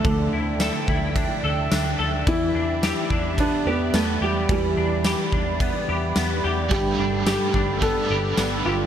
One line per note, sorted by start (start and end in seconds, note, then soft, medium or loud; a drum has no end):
0.00 2.23 F3 medium
0.00 1.16 D4 medium
0.00 0.32 E4 medium
0.00 0.60 A4 medium
0.00 8.86 D5 medium
0.00 6.67 E5 medium
0.04 0.29 D2 loud
0.04 2.27 D3 medium
0.04 1.95 A3 medium
0.04 2.24 G5 medium
0.04 kick loud
0.04 ride medium
0.32 0.69 D2 loud
0.32 0.88 E4 medium
0.60 1.43 A4 medium
0.60 snare loud
0.60 ride medium
0.60 tambourine medium
0.88 1.25 D2 medium
0.88 2.55 E4 medium
0.88 kick medium
1.16 1.71 D4 medium
1.16 kick loud
1.16 ride medium
1.43 1.68 D2 loud
1.43 1.98 A4 medium
1.71 1.96 D2 loud
1.71 2.55 D4 medium
1.71 snare loud
1.71 ride medium
1.71 tambourine medium
1.99 2.23 D2 loud
1.99 2.32 A4 medium
2.26 2.51 E2 loud
2.26 4.48 E3 medium
2.26 3.35 E4 loud
2.26 6.67 G4 medium
2.26 8.86 B5 medium
2.26 kick loud
2.26 ride medium
2.54 2.91 E2 loud
2.54 3.11 D4 medium
2.83 3.67 G4 medium
2.83 snare loud
2.83 ride medium
2.83 tambourine medium
3.10 3.47 E2 medium
3.10 4.77 D4 medium
3.10 kick medium
3.38 3.94 B3 medium
3.38 3.67 D4 loud
3.38 kick medium
3.38 ride medium
3.65 3.90 E2 loud
3.65 3.95 B3 loud
3.65 4.22 G4 medium
3.93 4.18 E2 loud
3.93 4.22 A3 loud
3.93 5.61 B3 medium
3.93 snare loud
3.93 ride medium
3.93 tambourine medium
4.21 4.46 E2 loud
4.21 4.48 G3 medium
4.21 5.04 G4 medium
4.49 4.74 E2 loud
4.49 6.71 E3 medium
4.49 6.41 G3 medium
4.49 kick loud
4.49 ride medium
4.77 5.14 E2 medium
4.77 5.33 D4 medium
5.04 5.89 G4 medium
5.04 snare loud
5.04 ride medium
5.04 tambourine medium
5.32 5.69 E2 loud
5.32 6.99 D4 medium
5.32 kick medium
5.60 6.16 B3 medium
5.60 kick medium
5.60 ride medium
5.89 6.13 E2 loud
5.89 6.44 G4 medium
6.16 6.40 E2 loud
6.16 7.82 B3 medium
6.16 snare loud
6.16 ride medium
6.16 tambourine medium
6.44 6.68 E2 medium
6.44 7.26 G4 medium
6.69 6.96 G1 loud
6.69 8.86 G2 medium
6.69 7.82 G3 medium
6.69 7.78 A3 medium
6.69 7.23 G4 loud
6.69 8.86 A4 medium
6.69 8.86 G5 medium
6.69 kick loud
6.69 ride medium
6.73 7.81 D4 medium
6.73 7.82 G4 medium
6.73 7.84 B4 medium
6.99 7.36 G1 loud
6.99 7.55 D4 medium
7.26 7.84 G4 loud
7.26 8.10 G4 medium
7.26 snare loud
7.26 ride medium
7.26 tambourine medium
7.54 7.91 G1 loud
7.54 8.86 D4 medium
7.54 kick medium
7.79 8.09 A3 medium
7.79 8.37 B3 medium
7.79 8.10 D4 medium
7.79 8.09 G4 medium
7.79 8.68 A4 loud
7.79 kick medium
7.79 ride medium
7.85 8.06 B4 medium
8.07 8.35 G1 medium
8.07 8.86 G4 medium
8.07 8.65 G4 medium
8.07 8.86 B4 medium
8.13 8.86 D4 soft
8.37 8.62 G1 loud
8.37 8.86 B3 medium
8.37 snare loud
8.37 ride medium
8.37 tambourine medium
8.65 8.86 G1 loud
8.65 8.86 F4 medium
8.65 8.86 G4 medium